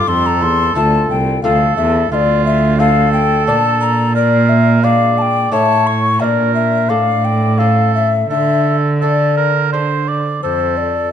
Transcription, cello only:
0.08 0.44 F2 medium
0.42 0.76 E2 medium
0.77 1.10 D2 medium
1.11 1.44 C2 medium
1.44 1.77 D2 medium
1.78 2.11 E2 medium
2.12 3.49 D2 medium
3.48 5.51 A#2 medium
5.52 6.22 A2 medium
6.21 6.91 A#2 medium
6.89 8.30 A2 medium
8.30 10.20 D3 medium
10.43 11.09 F2 medium

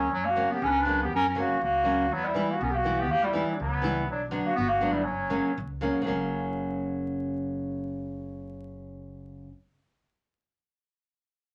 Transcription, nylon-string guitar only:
0.36 0.56 C#3 medium
0.36 0.56 F#3 medium
0.36 0.56 A#3 medium
0.36 0.56 C#4 medium
0.85 1.05 C#3 medium
0.85 1.06 F#3 medium
0.85 1.06 A#3 medium
0.85 1.07 C#4 medium
1.35 1.55 C#3 medium
1.35 1.55 F#3 medium
1.35 1.56 A#3 medium
1.35 1.56 C#4 medium
1.83 2.04 C#3 medium
1.83 2.04 F#3 medium
1.83 2.05 A#3 medium
1.83 2.05 C#4 medium
2.34 2.54 E3 medium
2.34 2.55 G3 medium
2.34 2.55 B3 medium
2.34 2.55 E4 medium
2.84 3.04 E3 medium
2.84 3.04 G3 medium
2.84 3.05 B3 medium
2.84 3.05 E4 medium
3.33 3.53 E3 medium
3.33 3.53 G3 medium
3.33 3.54 B3 medium
3.33 3.54 E4 medium
3.82 4.02 E3 medium
3.82 4.03 G3 medium
3.82 4.03 B3 medium
3.82 4.03 E4 medium
4.31 4.51 D3 medium
4.31 4.51 F#3 medium
4.31 4.52 B3 medium
4.31 4.52 D4 medium
4.81 5.01 D3 medium
4.81 5.01 F#3 medium
4.81 5.01 B3 medium
4.81 5.02 D4 medium
5.30 5.50 C#3 medium
5.30 5.50 F#3 medium
5.30 5.50 A#3 medium
5.30 5.51 C#4 medium
5.81 6.00 C#3 medium
5.81 6.01 F#3 medium
5.81 6.01 A#3 medium
5.81 6.01 C#4 medium
6.02 9.47 C#3 medium
6.02 9.49 F#3 medium
6.07 9.50 A#3 medium
6.07 9.51 C#4 medium

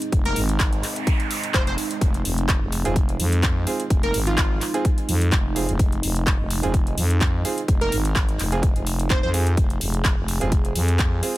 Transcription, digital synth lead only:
0.25 0.41 A#4 medium
1.54 1.62 C5 medium
1.67 1.74 C5 medium
4.03 4.19 A#4 medium
4.27 4.74 F4 medium
7.81 7.96 A#4 loud
9.10 9.18 C5 medium
9.23 9.30 C5 medium

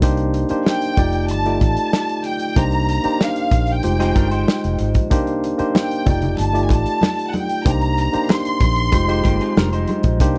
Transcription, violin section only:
0.67 1.26 G5 loud
1.31 1.62 A5 medium
1.63 2.22 A5 loud
2.27 2.58 G5 loud
2.58 3.21 A#5 loud
3.23 3.69 F5 loud
3.71 4.81 G5 medium
5.77 6.35 G5 medium
6.39 6.64 A5 medium
6.64 6.71 G#5 medium
6.72 7.28 A5 loud
7.29 7.35 F#5 medium
7.37 7.67 G5 medium
7.68 8.31 A#5 loud
8.31 9.89 C6 loud

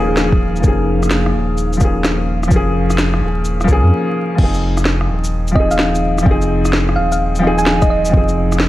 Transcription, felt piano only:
0.00 0.60 F3 loud
0.00 0.62 A#3 medium
0.00 0.65 C#4 medium
0.00 0.68 G#4 loud
0.60 1.75 F3 medium
0.60 1.78 A#3 medium
0.65 1.80 C#4 medium
0.65 1.81 G#4 medium
1.77 2.46 F3 medium
1.77 2.49 A#3 medium
1.82 2.50 C#4 medium
1.82 2.51 G#4 medium
2.48 3.63 F3 loud
2.48 3.65 A#3 medium
2.53 3.68 C#4 medium
2.53 3.69 G#4 loud
3.64 3.90 F3 loud
3.64 3.91 A#3 medium
3.70 3.92 C#4 medium
3.70 3.94 G#4 loud
4.35 5.50 F3 medium
4.35 5.53 C4 medium
4.40 5.55 D#4 medium
4.40 5.56 G#4 medium
5.51 6.21 F3 medium
5.51 6.24 C4 medium
5.57 6.25 D#4 medium
5.57 6.26 G#4 medium
6.22 7.38 F3 medium
6.22 7.40 C4 medium
6.28 7.42 D#4 medium
6.28 7.44 G#4 loud
7.39 8.07 F3 loud
7.39 8.10 C4 medium
7.44 8.12 D#4 medium
7.44 8.14 G#4 loud
8.09 8.69 F3 medium
8.09 8.69 C4 medium
8.14 8.69 D#4 medium
8.14 8.69 G#4 medium

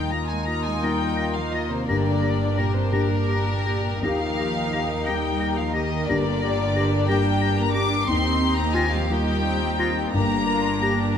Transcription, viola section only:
0.00 3.99 A#3 medium
0.00 1.85 D#4 medium
1.88 3.98 D4 medium
4.03 8.05 A#3 medium
4.03 6.09 D#4 medium
6.10 8.10 D4 medium
8.09 9.07 C4 medium
8.09 9.07 D#4 medium
9.10 9.44 A#3 medium
9.10 10.11 D#4 medium
9.44 9.78 C4 medium
9.79 10.13 C4 medium
10.12 11.15 A#3 medium
10.12 11.18 D4 medium

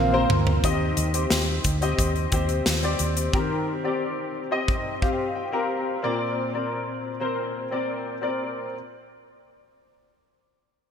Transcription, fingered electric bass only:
0.00 0.24 A#1 loud
0.30 0.58 D2 medium
0.64 0.91 D#2 medium
0.97 1.25 D#2 medium
1.31 1.59 D#2 medium
1.65 1.92 D2 medium
1.98 2.26 D#2 medium
2.33 2.60 D#2 loud
2.66 2.94 D#2 medium
3.00 3.27 D#2 medium

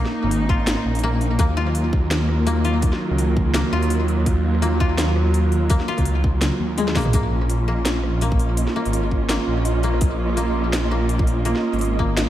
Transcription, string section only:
0.00 7.10 A#3 medium
0.00 1.35 C#4 medium
0.00 1.36 D#4 medium
1.39 7.10 D#3 medium
1.39 7.10 F#3 medium
1.39 7.10 F4 medium
7.14 12.29 A#3 medium
7.14 12.29 C#4 medium
7.14 12.29 F4 medium

